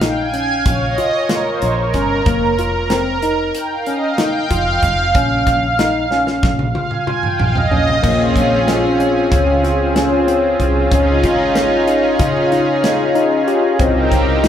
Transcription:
Already playing: fretless electric bass A#1
0.01 tine electric piano D#4, analog synth pad G5, snare, closed hi-hat
0.19 analog synth pad G#5
0.34 tine electric piano C#4, closed hi-hat
0.50 analog synth pad F5
0.66 fretless electric bass A#1, analog synth pad C#5, kick, closed hi-hat
0.83 analog synth pad D#5
0.98 tine electric piano F4, closed hi-hat
1.15 analog synth pad C#5
1.29 tine electric piano F4, analog synth pad A#4, snare, closed hi-hat
1.47 analog synth pad C5
1.62 fretless electric bass A#1, analog synth pad C#5, closed hi-hat
1.79 analog synth pad A#4
1.94 fretless electric bass G1, tine electric piano C#4, kick, snare, closed hi-hat
2.26 fretless electric bass F1, tine electric piano A#3, kick, closed hi-hat
2.59 tine electric piano F4, closed hi-hat
2.90 tine electric piano C4, snare, closed hi-hat
3.22 tine electric piano D#4, closed hi-hat
3.55 analog synth pad G5, closed hi-hat
3.71 analog synth pad F5
3.86 tine electric piano C#4, analog synth pad D#5, closed hi-hat
4.03 analog synth pad F5
4.18 tine electric piano D#4, analog synth pad G5, snare, closed hi-hat
4.51 fretless electric bass F1, tine electric piano F4, analog synth pad F5, kick, closed hi-hat
4.82 fretless electric bass F1, kick, closed hi-hat
5.15 fretless electric bass A#1, tine electric piano C#4, kick, closed hi-hat
5.47 fretless electric bass A#1, kick, snare, closed hi-hat
5.79 tine electric piano D#4, snare, closed hi-hat
6.11 tine electric piano C#4, snare
6.27 snare
6.43 fretless electric bass A#1, kick, snare
6.59 high tom
6.75 tine electric piano F4, analog synth pad F5, high tom
6.90 analog synth pad G#5, mid tom
7.07 tine electric piano F4, mid tom
7.21 analog synth pad G5, mid tom
7.37 fretless electric bass A#1, analog synth pad F5, mid tom
7.53 analog synth pad D#5, floor tom
7.71 fretless electric bass A#1, tine electric piano C#4, floor tom
7.88 floor tom
8.02 fretless electric bass A#1, tine electric piano A#3, analog synth pad C4 C#4 F4 G#4, kick, crash
8.36 fretless electric bass A#1, kick, closed hi-hat
8.67 tine electric piano C#4, snare, closed hi-hat
8.99 tine electric piano C#4, closed hi-hat
9.32 fretless electric bass C#2, kick, snare, closed hi-hat
9.64 tine electric piano F4, snare, closed hi-hat
9.95 tine electric piano C#4, snare, closed hi-hat
10.28 tine electric piano C4, closed hi-hat
10.60 fretless electric bass C2, kick, closed hi-hat
10.90 fretless electric bass C#2, analog synth pad C#4 D#4 F4 G#4, tine electric piano C#4, kick, closed hi-hat
11.24 fretless electric bass G#1, tine electric piano F4, kick, closed hi-hat
11.55 snare, closed hi-hat
11.87 tine electric piano D#4, closed hi-hat
12.19 fretless electric bass C#3, tine electric piano F4, kick, closed hi-hat
12.52 tine electric piano D#4, snare, closed hi-hat
12.84 snare, closed hi-hat
13.15 tine electric piano D#4, closed hi-hat
13.48 tine electric piano G4, closed hi-hat
13.78 fretless electric bass C2, analog synth pad C4 D#4 G4 A#4, tine electric piano C4, kick, closed hi-hat
14.12 fretless electric bass C2, kick, snare, closed hi-hat
14.43 tine electric piano D#4, snare, closed hi-hat

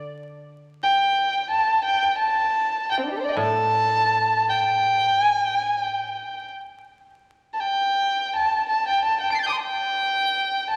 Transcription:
Already playing: koto D3
0.83 violin G5
1.50 violin A5
1.85 violin G5
2.18 violin A5
2.91 violin G5
2.99 violin C4
3.04 violin D4 D#4
3.12 violin G4
3.17 violin A4 C5
3.25 violin D5 D#5
3.33 koto A2, violin G5
3.38 violin A5
4.50 violin G5
5.21 violin G#5
5.40 violin G5
5.60 violin G#5
5.79 violin G5
7.53 violin A5
7.60 violin G5
8.36 violin A5
8.69 violin A5
8.88 violin G5
9.05 violin A5
9.20 violin G5
9.31 violin A5 D7
9.35 violin C7
9.39 violin G6 A6
9.46 violin G5 D6 D#6
9.53 violin C6
9.58 violin A5
9.62 violin G5
10.71 violin A5

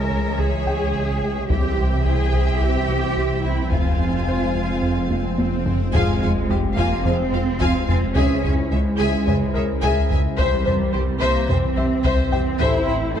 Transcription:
Already playing: double bass section C#2, detuned saw bass C#2, analog synth pad E3 G#3 G#4 C#5, viola section G#3, cello section A#4, violin section C#5 E5, felt piano G5 G#5
0.10 analog synth bass C#2
0.38 analog synth bass C#2, cello section G#4
0.66 analog synth bass C#2, felt piano G5
0.94 analog synth bass C#2
1.22 analog synth bass C#2
1.49 detuned saw bass C2, double bass section C2, analog synth bass C2, analog synth pad E3 C4 E4 C5, viola section C4, cello section G4, violin section E5 G5, taiko
1.77 analog synth bass C2
2.06 analog synth bass C2, cello section G#4
2.33 analog synth bass C2
2.61 analog synth bass C2, cello section G4
2.88 analog synth bass C2
3.16 analog synth bass C2
3.44 analog synth bass C2, cello section E4
3.71 detuned saw bass F1, analog synth bass F2, double bass section F2, analog synth pad G#3 F4, cello section F4, violin section F5 G#5, taiko, swell
3.99 analog synth bass F2
4.27 analog synth bass F2, felt piano C5
4.55 analog synth bass F2
4.82 analog synth bass F2
5.10 analog synth bass F2, taiko high
5.38 analog synth bass F2, taiko high
5.66 analog synth bass F2, taiko low
5.94 detuned saw bass F1, analog synth bass F2, double bass section F2, trombone section F3 G#3, cello section G#3, analog synth pad G#3 C4 F4 C5, viola section F4, french horn section G#4 C5, violin section F5 G#5, taiko, sub drop
6.21 analog synth bass F2, double bass section F2, viola section F4, violin section F5 G#5, taiko low
6.49 analog synth bass F2, double bass section F2, viola section F4, felt piano G4, violin section C5 F5
6.77 analog synth bass F2, double bass section F2, cello section A#3, viola section F4, violin section F5 G#5
7.05 double bass section F2, analog synth bass F3, trombone section F3 G#3, cello section C4, viola section F4, french horn section G#4 C5, violin section F5 G#5, taiko low
7.33 double bass section F2, analog synth bass F2, viola section F4, violin section C5 F5
7.60 analog synth bass F2, double bass section F2, viola section F4, violin section F5 G#5, taiko
7.87 double bass section F2, analog synth bass F2, cello section C4, viola section F4, violin section F5 G#5, taiko low
8.15 double bass section C#2, detuned saw bass C#2, analog synth bass C#2, trombone section E3 G#3, analog synth pad C#4 E4, cello section C#4, viola section G#4, french horn section G#4 C#5, violin section E5 G#5, taiko
8.43 double bass section C#2, analog synth bass C#2, viola section G#4, violin section E5 G#5, taiko low
8.71 analog synth bass C#2, double bass section C#2, cello section G#3, viola section G#4, violin section C#5 E5
8.98 double bass section C#2, analog synth bass C#2, viola section G#4, violin section E5 G#5
9.27 double bass section C#2, analog synth bass C#3, trombone section E3 G#3, viola section G#4, french horn section G#4 C#5, violin section E5 G#5, taiko low
9.54 analog synth bass C#2, double bass section C#2, viola section G#4, felt piano A#4, violin section C#5 E5
9.81 analog synth bass C#2, double bass section C#2, viola section G#4, violin section E5 G#5, taiko
10.09 double bass section C#2, analog synth bass C#2, viola section G#4, violin section E5 G#5, taiko low
10.38 analog synth bass C2, detuned saw bass C2, double bass section C2, trombone section C3 E3, analog synth pad E3 C4 G4 C5, cello section G3, viola section C5, french horn section C5, violin section C5 E5, taiko
10.65 analog synth bass C2, double bass section C2, viola section C5, violin section C5 E5, felt piano C5, taiko low
10.93 analog synth bass C2, double bass section C2, violin section G4 C5, viola section C5
11.20 analog synth bass C2, double bass section C2, cello section A#3, violin section C5 E5, viola section C5
11.48 double bass section C2, analog synth bass C3, trombone section C3 E3, cello section C4, violin section C5 E5, viola section C5, french horn section C5, taiko low
11.76 analog synth bass C2, double bass section C2, violin section G4 C5, viola section C5, felt piano E5
12.04 analog synth bass C2, double bass section C2, violin section C5 E5, viola section C5, taiko
12.31 analog synth bass C2, double bass section C2, cello section C4, felt piano G4 G5, violin section C5 E5, viola section C5, taiko low
12.59 detuned saw bass A1, double bass section A1, analog synth bass A2, trombone section C3 E3, analog synth pad E4, cello section E4, french horn section A4 C5, violin section C5 E5, viola section C5, taiko
12.87 double bass section A1, analog synth bass A2, violin section C5 E5, viola section C5
13.15 double bass section A1, analog synth bass A2, cello section A3, violin section A4 C5, viola section C5

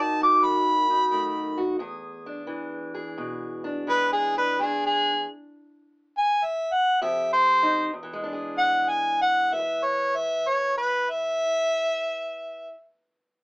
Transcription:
Already playing: steel-string acoustic guitar D#3 D#4 F#4
0.01 harmonica A5
0.21 steel-string acoustic guitar F#4, harmonica D6
0.43 steel-string acoustic guitar F#2, harmonica B5
0.89 steel-string acoustic guitar D#4
1.11 steel-string acoustic guitar D#3 A3
1.58 steel-string acoustic guitar F#4
1.79 steel-string acoustic guitar E2 G#4
2.26 steel-string acoustic guitar D4
2.47 steel-string acoustic guitar E3
2.94 steel-string acoustic guitar G#4
3.18 steel-string acoustic guitar B2
3.64 steel-string acoustic guitar D4
3.87 steel-string acoustic guitar E3 G#3, harmonica B4
4.13 harmonica G#4
4.36 steel-string acoustic guitar D4, harmonica B4
4.59 steel-string acoustic guitar E2 D4, harmonica G#4
4.86 harmonica G#4
6.18 harmonica G#5
6.45 harmonica E5
6.73 harmonica F#5
7.02 steel-string acoustic guitar F2 G4, harmonica E5
7.33 harmonica C5
7.63 steel-string acoustic guitar D#4
7.93 steel-string acoustic guitar E2
8.03 steel-string acoustic guitar E3
8.13 steel-string acoustic guitar G#3
8.24 steel-string acoustic guitar D4
8.33 steel-string acoustic guitar G#4
8.58 harmonica F#5
8.89 harmonica G#5
9.22 harmonica F#5
9.53 steel-string acoustic guitar B4, harmonica E5
9.59 steel-string acoustic guitar E5
9.84 harmonica C#5
10.16 harmonica E5
10.48 harmonica C#5
10.78 harmonica B4
11.10 harmonica E5

